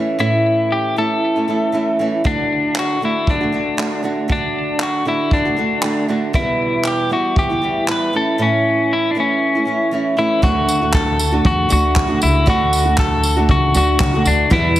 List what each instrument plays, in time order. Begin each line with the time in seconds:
Already playing: nylon-string guitar E3 A3 C#4 E4
0.19 nylon-string guitar A2 E3 A3 C#4 E4, clean electric guitar E4
0.72 clean electric guitar G4
0.96 nylon-string guitar E3 A3 C#4 E4, clean electric guitar A4
1.36 nylon-string guitar A3 C#4 E4
1.48 nylon-string guitar E3 A3 C#4 E4
1.72 nylon-string guitar E3 A3 C#4 E4
1.99 nylon-string guitar E3 A3 C#4 E4
2.24 nylon-string guitar D3 A3 D4 F#4, clean electric guitar D4, kick
2.76 clean electric guitar F#4, clap
3.01 nylon-string guitar D3 A3 D4 F#4
3.05 clean electric guitar E4
3.27 clean electric guitar D4, kick
3.41 nylon-string guitar A3 D4 F#4
3.52 nylon-string guitar D3 A3 D4 F#4
3.77 nylon-string guitar D3 A3 D4 F#4, clap
4.03 nylon-string guitar D3 A3 D4 F#4
4.28 nylon-string guitar D3 A3 D4 F#4, kick
4.32 clean electric guitar D4
4.80 clean electric guitar F#4, clap
5.05 nylon-string guitar D3 A3 D4 F#4, clean electric guitar E4
5.31 clean electric guitar D4, kick
5.45 nylon-string guitar A3 D4 F#4
5.57 nylon-string guitar D3 A3 D4 F#4
5.83 nylon-string guitar D3 A3 D4 F#4, clap
6.08 nylon-string guitar D3 A3 D4 F#4
6.33 nylon-string guitar E2 B2 E3 G3 B3 E4, clean electric guitar E4, kick
6.85 clean electric guitar G4, clap
7.10 nylon-string guitar E3 G3 B3 E4, clean electric guitar F#4
7.36 clean electric guitar G4, kick
7.50 nylon-string guitar E3 G3 B3 E4
7.62 nylon-string guitar E3 G3 B3 E4
7.87 nylon-string guitar E3 G3 B3 E4, clap
7.91 clean electric guitar B4
8.13 nylon-string guitar E3 A3 C#4 E4, clean electric guitar A4
8.38 nylon-string guitar A2 E3 A3 C#4 E4, clean electric guitar C#4
8.93 clean electric guitar E4
9.11 clean electric guitar D4
9.15 nylon-string guitar E3 A3 C#4 E4
9.20 clean electric guitar C#4
9.55 nylon-string guitar A3 C#4 E4
9.65 nylon-string guitar E3 A3 C#4 E4
9.91 nylon-string guitar E3 A3 C#4 E4
10.17 nylon-string guitar E3 A3 C#4 E4, clean electric guitar E4
10.42 upright bass D2, nylon-string guitar D3 A3 D4 F#4, clean electric guitar F#4, kick
10.69 tambourine
10.81 nylon-string guitar A3 D4 F#4
10.93 clean electric guitar A4, kick, clap
11.19 tambourine
11.32 nylon-string guitar A3 D4 F#4
11.45 upright bass E2, clean electric guitar F#4, kick
11.69 upright bass D2, nylon-string guitar D3 A3 D4 F#4, clean electric guitar F#4, tambourine
11.96 kick, clap
12.08 nylon-string guitar A3 D4 F#4
12.22 upright bass C#2, clean electric guitar E4, tambourine
12.46 upright bass D2, nylon-string guitar D3 A3 D4 F#4, clean electric guitar F#4, kick
12.73 tambourine
12.85 nylon-string guitar A3 D4 F#4
12.98 clean electric guitar A4, kick, clap
13.24 tambourine
13.37 nylon-string guitar A3 D4 F#4
13.49 upright bass C#2, clean electric guitar F#4, kick
13.74 upright bass D2, nylon-string guitar D3 A3 D4 F#4, clean electric guitar F#4, tambourine
14.00 upright bass C#2, kick, clap
14.14 nylon-string guitar A3 D4 F#4
14.25 upright bass D2, clean electric guitar D4, tambourine
14.50 nylon-string guitar E2 B2 E3 G3 B3 E4, upright bass E2, clean electric guitar E4, kick
14.76 tambourine